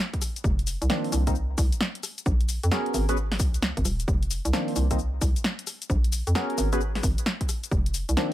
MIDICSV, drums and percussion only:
0, 0, Header, 1, 2, 480
1, 0, Start_track
1, 0, Key_signature, -4, "minor"
1, 0, Tempo, 454545
1, 468, Time_signature, 4, 2, 24, 8
1, 8801, End_track
2, 0, Start_track
2, 0, Title_t, "Drums"
2, 142, Note_on_c, 9, 36, 64
2, 143, Note_on_c, 9, 42, 51
2, 228, Note_on_c, 9, 37, 33
2, 228, Note_on_c, 9, 46, 113
2, 228, Note_on_c, 9, 69, 75
2, 248, Note_off_c, 9, 36, 0
2, 249, Note_off_c, 9, 42, 0
2, 334, Note_off_c, 9, 37, 0
2, 334, Note_off_c, 9, 46, 0
2, 334, Note_off_c, 9, 69, 0
2, 384, Note_on_c, 9, 42, 63
2, 384, Note_on_c, 9, 69, 39
2, 467, Note_on_c, 9, 36, 126
2, 468, Note_off_c, 9, 69, 0
2, 468, Note_on_c, 9, 69, 30
2, 489, Note_off_c, 9, 42, 0
2, 572, Note_off_c, 9, 36, 0
2, 574, Note_off_c, 9, 69, 0
2, 624, Note_on_c, 9, 42, 51
2, 707, Note_on_c, 9, 46, 108
2, 707, Note_on_c, 9, 69, 76
2, 729, Note_off_c, 9, 42, 0
2, 813, Note_off_c, 9, 46, 0
2, 813, Note_off_c, 9, 69, 0
2, 863, Note_on_c, 9, 42, 61
2, 863, Note_on_c, 9, 69, 41
2, 947, Note_off_c, 9, 69, 0
2, 947, Note_on_c, 9, 38, 127
2, 947, Note_on_c, 9, 69, 31
2, 969, Note_off_c, 9, 42, 0
2, 1053, Note_off_c, 9, 38, 0
2, 1053, Note_off_c, 9, 69, 0
2, 1103, Note_on_c, 9, 46, 59
2, 1187, Note_off_c, 9, 46, 0
2, 1187, Note_on_c, 9, 46, 103
2, 1187, Note_on_c, 9, 69, 74
2, 1292, Note_off_c, 9, 46, 0
2, 1292, Note_off_c, 9, 69, 0
2, 1342, Note_on_c, 9, 36, 63
2, 1342, Note_on_c, 9, 37, 54
2, 1342, Note_on_c, 9, 42, 62
2, 1342, Note_on_c, 9, 69, 41
2, 1427, Note_off_c, 9, 69, 0
2, 1427, Note_on_c, 9, 69, 31
2, 1447, Note_off_c, 9, 36, 0
2, 1447, Note_off_c, 9, 37, 0
2, 1447, Note_off_c, 9, 42, 0
2, 1533, Note_off_c, 9, 69, 0
2, 1666, Note_on_c, 9, 36, 111
2, 1667, Note_on_c, 9, 46, 99
2, 1667, Note_on_c, 9, 69, 70
2, 1772, Note_off_c, 9, 36, 0
2, 1772, Note_off_c, 9, 46, 0
2, 1772, Note_off_c, 9, 69, 0
2, 1821, Note_on_c, 9, 42, 60
2, 1821, Note_on_c, 9, 69, 39
2, 1907, Note_off_c, 9, 69, 0
2, 1907, Note_on_c, 9, 38, 120
2, 1907, Note_on_c, 9, 69, 30
2, 1927, Note_off_c, 9, 42, 0
2, 2012, Note_off_c, 9, 38, 0
2, 2012, Note_off_c, 9, 69, 0
2, 2061, Note_on_c, 9, 42, 54
2, 2147, Note_on_c, 9, 37, 34
2, 2147, Note_on_c, 9, 46, 108
2, 2147, Note_on_c, 9, 69, 76
2, 2167, Note_off_c, 9, 42, 0
2, 2252, Note_off_c, 9, 37, 0
2, 2252, Note_off_c, 9, 46, 0
2, 2252, Note_off_c, 9, 69, 0
2, 2302, Note_on_c, 9, 42, 62
2, 2302, Note_on_c, 9, 69, 40
2, 2386, Note_off_c, 9, 69, 0
2, 2386, Note_on_c, 9, 36, 127
2, 2386, Note_on_c, 9, 69, 31
2, 2407, Note_off_c, 9, 42, 0
2, 2491, Note_off_c, 9, 69, 0
2, 2492, Note_off_c, 9, 36, 0
2, 2541, Note_on_c, 9, 42, 53
2, 2626, Note_on_c, 9, 46, 103
2, 2626, Note_on_c, 9, 69, 80
2, 2646, Note_off_c, 9, 42, 0
2, 2731, Note_off_c, 9, 46, 0
2, 2731, Note_off_c, 9, 69, 0
2, 2782, Note_on_c, 9, 42, 63
2, 2782, Note_on_c, 9, 69, 41
2, 2867, Note_off_c, 9, 69, 0
2, 2867, Note_on_c, 9, 38, 127
2, 2867, Note_on_c, 9, 69, 32
2, 2887, Note_off_c, 9, 42, 0
2, 2973, Note_off_c, 9, 38, 0
2, 2973, Note_off_c, 9, 69, 0
2, 3023, Note_on_c, 9, 42, 37
2, 3107, Note_on_c, 9, 46, 107
2, 3107, Note_on_c, 9, 69, 77
2, 3128, Note_off_c, 9, 42, 0
2, 3213, Note_off_c, 9, 46, 0
2, 3213, Note_off_c, 9, 69, 0
2, 3262, Note_on_c, 9, 37, 55
2, 3262, Note_on_c, 9, 42, 64
2, 3262, Note_on_c, 9, 69, 43
2, 3346, Note_off_c, 9, 69, 0
2, 3346, Note_on_c, 9, 69, 33
2, 3367, Note_off_c, 9, 37, 0
2, 3367, Note_off_c, 9, 42, 0
2, 3452, Note_off_c, 9, 69, 0
2, 3501, Note_on_c, 9, 37, 31
2, 3501, Note_on_c, 9, 38, 66
2, 3501, Note_on_c, 9, 46, 59
2, 3586, Note_off_c, 9, 46, 0
2, 3586, Note_on_c, 9, 36, 110
2, 3586, Note_on_c, 9, 46, 92
2, 3586, Note_on_c, 9, 69, 76
2, 3607, Note_off_c, 9, 37, 0
2, 3607, Note_off_c, 9, 38, 0
2, 3692, Note_off_c, 9, 36, 0
2, 3692, Note_off_c, 9, 46, 0
2, 3692, Note_off_c, 9, 69, 0
2, 3741, Note_on_c, 9, 42, 62
2, 3741, Note_on_c, 9, 69, 42
2, 3827, Note_off_c, 9, 69, 0
2, 3827, Note_on_c, 9, 38, 127
2, 3827, Note_on_c, 9, 69, 33
2, 3847, Note_off_c, 9, 42, 0
2, 3933, Note_off_c, 9, 38, 0
2, 3933, Note_off_c, 9, 69, 0
2, 3982, Note_on_c, 9, 36, 64
2, 3983, Note_on_c, 9, 42, 55
2, 4067, Note_on_c, 9, 37, 32
2, 4067, Note_on_c, 9, 46, 105
2, 4067, Note_on_c, 9, 69, 81
2, 4087, Note_off_c, 9, 36, 0
2, 4088, Note_off_c, 9, 42, 0
2, 4173, Note_off_c, 9, 37, 0
2, 4173, Note_off_c, 9, 46, 0
2, 4173, Note_off_c, 9, 69, 0
2, 4222, Note_on_c, 9, 42, 65
2, 4222, Note_on_c, 9, 69, 43
2, 4306, Note_on_c, 9, 36, 114
2, 4307, Note_off_c, 9, 69, 0
2, 4307, Note_on_c, 9, 69, 31
2, 4327, Note_off_c, 9, 42, 0
2, 4412, Note_off_c, 9, 36, 0
2, 4413, Note_off_c, 9, 69, 0
2, 4462, Note_on_c, 9, 42, 54
2, 4548, Note_on_c, 9, 46, 102
2, 4548, Note_on_c, 9, 69, 79
2, 4568, Note_off_c, 9, 42, 0
2, 4653, Note_off_c, 9, 46, 0
2, 4653, Note_off_c, 9, 69, 0
2, 4703, Note_on_c, 9, 42, 66
2, 4703, Note_on_c, 9, 69, 43
2, 4788, Note_off_c, 9, 69, 0
2, 4788, Note_on_c, 9, 38, 123
2, 4788, Note_on_c, 9, 69, 33
2, 4809, Note_off_c, 9, 42, 0
2, 4894, Note_off_c, 9, 38, 0
2, 4894, Note_off_c, 9, 69, 0
2, 4943, Note_on_c, 9, 46, 60
2, 5026, Note_off_c, 9, 46, 0
2, 5026, Note_on_c, 9, 46, 106
2, 5026, Note_on_c, 9, 69, 80
2, 5132, Note_off_c, 9, 46, 0
2, 5132, Note_off_c, 9, 69, 0
2, 5182, Note_on_c, 9, 36, 60
2, 5182, Note_on_c, 9, 37, 55
2, 5182, Note_on_c, 9, 42, 66
2, 5182, Note_on_c, 9, 69, 44
2, 5268, Note_off_c, 9, 69, 0
2, 5268, Note_on_c, 9, 69, 34
2, 5288, Note_off_c, 9, 36, 0
2, 5288, Note_off_c, 9, 37, 0
2, 5288, Note_off_c, 9, 42, 0
2, 5373, Note_off_c, 9, 69, 0
2, 5507, Note_on_c, 9, 36, 108
2, 5508, Note_on_c, 9, 46, 99
2, 5508, Note_on_c, 9, 69, 77
2, 5612, Note_off_c, 9, 36, 0
2, 5614, Note_off_c, 9, 46, 0
2, 5614, Note_off_c, 9, 69, 0
2, 5663, Note_on_c, 9, 42, 63
2, 5663, Note_on_c, 9, 69, 42
2, 5748, Note_off_c, 9, 69, 0
2, 5748, Note_on_c, 9, 38, 124
2, 5748, Note_on_c, 9, 69, 33
2, 5769, Note_off_c, 9, 42, 0
2, 5854, Note_off_c, 9, 38, 0
2, 5854, Note_off_c, 9, 69, 0
2, 5902, Note_on_c, 9, 42, 58
2, 5988, Note_on_c, 9, 37, 31
2, 5988, Note_on_c, 9, 46, 108
2, 5988, Note_on_c, 9, 69, 82
2, 6008, Note_off_c, 9, 42, 0
2, 6093, Note_off_c, 9, 37, 0
2, 6093, Note_off_c, 9, 46, 0
2, 6093, Note_off_c, 9, 69, 0
2, 6143, Note_on_c, 9, 42, 68
2, 6143, Note_on_c, 9, 69, 45
2, 6227, Note_on_c, 9, 36, 108
2, 6228, Note_off_c, 9, 69, 0
2, 6228, Note_on_c, 9, 69, 31
2, 6249, Note_off_c, 9, 42, 0
2, 6333, Note_off_c, 9, 36, 0
2, 6334, Note_off_c, 9, 69, 0
2, 6383, Note_on_c, 9, 42, 56
2, 6467, Note_on_c, 9, 46, 110
2, 6467, Note_on_c, 9, 69, 83
2, 6488, Note_off_c, 9, 42, 0
2, 6573, Note_off_c, 9, 46, 0
2, 6573, Note_off_c, 9, 69, 0
2, 6622, Note_on_c, 9, 42, 64
2, 6622, Note_on_c, 9, 69, 45
2, 6708, Note_off_c, 9, 69, 0
2, 6708, Note_on_c, 9, 38, 113
2, 6708, Note_on_c, 9, 69, 35
2, 6728, Note_off_c, 9, 42, 0
2, 6813, Note_off_c, 9, 38, 0
2, 6813, Note_off_c, 9, 69, 0
2, 6863, Note_on_c, 9, 42, 39
2, 6947, Note_on_c, 9, 46, 106
2, 6947, Note_on_c, 9, 69, 80
2, 6969, Note_off_c, 9, 42, 0
2, 7053, Note_off_c, 9, 46, 0
2, 7053, Note_off_c, 9, 69, 0
2, 7103, Note_on_c, 9, 37, 51
2, 7103, Note_on_c, 9, 42, 72
2, 7103, Note_on_c, 9, 69, 45
2, 7188, Note_off_c, 9, 69, 0
2, 7188, Note_on_c, 9, 69, 34
2, 7209, Note_off_c, 9, 37, 0
2, 7209, Note_off_c, 9, 42, 0
2, 7294, Note_off_c, 9, 69, 0
2, 7343, Note_on_c, 9, 38, 62
2, 7343, Note_on_c, 9, 46, 61
2, 7427, Note_on_c, 9, 36, 108
2, 7428, Note_off_c, 9, 46, 0
2, 7428, Note_on_c, 9, 46, 100
2, 7428, Note_on_c, 9, 69, 74
2, 7449, Note_off_c, 9, 38, 0
2, 7533, Note_off_c, 9, 36, 0
2, 7533, Note_off_c, 9, 46, 0
2, 7533, Note_off_c, 9, 69, 0
2, 7584, Note_on_c, 9, 42, 67
2, 7584, Note_on_c, 9, 69, 42
2, 7667, Note_off_c, 9, 69, 0
2, 7667, Note_on_c, 9, 38, 114
2, 7667, Note_on_c, 9, 69, 35
2, 7689, Note_off_c, 9, 42, 0
2, 7773, Note_off_c, 9, 38, 0
2, 7773, Note_off_c, 9, 69, 0
2, 7822, Note_on_c, 9, 36, 61
2, 7823, Note_on_c, 9, 42, 57
2, 7908, Note_on_c, 9, 37, 33
2, 7908, Note_on_c, 9, 46, 112
2, 7908, Note_on_c, 9, 69, 83
2, 7928, Note_off_c, 9, 36, 0
2, 7928, Note_off_c, 9, 42, 0
2, 8013, Note_off_c, 9, 37, 0
2, 8013, Note_off_c, 9, 46, 0
2, 8013, Note_off_c, 9, 69, 0
2, 8063, Note_on_c, 9, 42, 70
2, 8063, Note_on_c, 9, 69, 45
2, 8147, Note_off_c, 9, 69, 0
2, 8147, Note_on_c, 9, 36, 114
2, 8147, Note_on_c, 9, 69, 32
2, 8169, Note_off_c, 9, 42, 0
2, 8252, Note_off_c, 9, 36, 0
2, 8253, Note_off_c, 9, 69, 0
2, 8303, Note_on_c, 9, 42, 58
2, 8387, Note_on_c, 9, 46, 111
2, 8387, Note_on_c, 9, 69, 77
2, 8408, Note_off_c, 9, 42, 0
2, 8492, Note_off_c, 9, 46, 0
2, 8492, Note_off_c, 9, 69, 0
2, 8542, Note_on_c, 9, 42, 67
2, 8542, Note_on_c, 9, 69, 43
2, 8627, Note_off_c, 9, 69, 0
2, 8627, Note_on_c, 9, 38, 116
2, 8627, Note_on_c, 9, 69, 34
2, 8648, Note_off_c, 9, 42, 0
2, 8733, Note_off_c, 9, 38, 0
2, 8733, Note_off_c, 9, 69, 0
2, 8801, End_track
0, 0, End_of_file